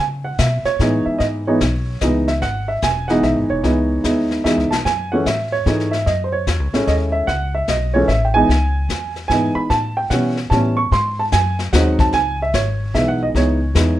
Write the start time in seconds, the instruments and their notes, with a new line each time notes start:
Already playing: upright bass C#3
0.25 grand piano F#5
0.38 upright bass B2, grand piano E5, kick, snare, hi-hat pedal
0.64 grand piano C#5, muted upright bass stroke, snare
0.79 upright bass A2, grand piano E3 G#3 B3 D#4, kick, snare
1.06 grand piano E5, muted upright bass stroke
1.19 upright bass G#2, grand piano D#5, brush sweep, kick, snare
1.47 grand piano E3 G#3 B3 D#4 C#5
1.61 upright bass B1, kick, snare, hi-hat pedal
2.01 upright bass C#2, grand piano E3 G#3 B3 D#4 D#5, kick, snare, hi-hat pedal
2.28 grand piano E5, snare
2.42 upright bass G#1, grand piano F#5, brush sweep, kick, snare
2.68 grand piano E5
2.82 upright bass E1, grand piano G#5, kick, snare, hi-hat pedal
3.08 grand piano E3 G#3 B3 D#4 F#5, snare
3.23 upright bass B1, grand piano E5, kick, snare
3.36 upright bass G#1
3.49 upright bass E1, grand piano C#5
3.63 upright bass C#2, grand piano E3 G#3 B3 D#4, brush sweep, kick, snare
4.04 upright bass D#2, grand piano G#3 B3 D#4 E4, kick, snare, hi-hat pedal
4.31 snare
4.44 upright bass E2, grand piano E3 G#3 B3 D#4 E5, kick, snare, hi-hat pedal
4.57 upright bass C#2, snare
4.71 upright bass B1, grand piano A5, snare
4.85 upright bass F#2, grand piano G#5, brush sweep, kick, snare
5.12 grand piano E3 G#3 A3 C#4 F#5
5.26 upright bass A2, grand piano E5, kick, snare, hi-hat pedal
5.52 grand piano C#5
5.66 upright bass G#2, grand piano E3 G#3 A3 D#4, kick, snare
5.80 snare
5.91 grand piano E5, snare
6.06 upright bass F#2, grand piano D#5, brush sweep, kick, snare
6.24 grand piano C5
6.32 grand piano C#5
6.47 upright bass E2, kick, snare, hi-hat pedal
6.60 upright bass C#2
6.73 upright bass A1, grand piano G#3 A3 C#4 E4, snare
6.87 upright bass D#2, grand piano D#5, kick, snare
7.12 grand piano E5
7.27 upright bass C#2, grand piano F#5, brush sweep, kick, snare
7.55 grand piano E5
7.68 upright bass B1, grand piano D#5, kick, snare, hi-hat pedal
7.94 grand piano E3 G#3 A3 C#4 C#5
8.08 upright bass A1, grand piano E5, kick, snare
8.25 grand piano G5
8.34 grand piano E3 G#3 B3 D#4 G#5
8.49 upright bass C#2, brush sweep, kick, snare
8.89 upright bass E2, kick, snare, hi-hat pedal
9.16 snare
9.28 upright bass G#2, grand piano E3 G#3 B3 D#4 G#5, kick, snare
9.55 grand piano B5, muted upright bass stroke
9.70 upright bass A2, grand piano A5, brush sweep, kick, snare
9.97 grand piano G5
10.10 upright bass B2, grand piano E3 G3 B3 C#4 F#5, kick, snare, hi-hat pedal
10.37 snare
10.50 upright bass A2, grand piano E3 G3 B3 C#4 A5, kick, snare
10.77 grand piano C#6
10.91 upright bass G#2, grand piano C6, brush sweep, kick, snare
11.19 grand piano A5
11.32 upright bass F#2, grand piano G#5, kick, snare, hi-hat pedal
11.59 snare
11.73 upright bass D#2, grand piano F#3 G#3 C4 D#4 F#5, kick, snare, hi-hat pedal
11.99 grand piano A5, kick, snare
12.12 upright bass C#2, grand piano G#5, brush sweep, kick, snare
12.42 grand piano E5
12.54 upright bass G#1, grand piano C#5, kick, snare, hi-hat pedal
12.94 upright bass B1, grand piano E3 G#3 B3 D#4 E5, kick, snare
13.08 grand piano F#5
13.23 grand piano D#5
13.35 upright bass C#2, grand piano E3 G#3 B3 D#4 C#5, brush sweep, kick, snare
13.74 upright bass E2, grand piano E3 G#3 B3 D#4, kick, snare, hi-hat pedal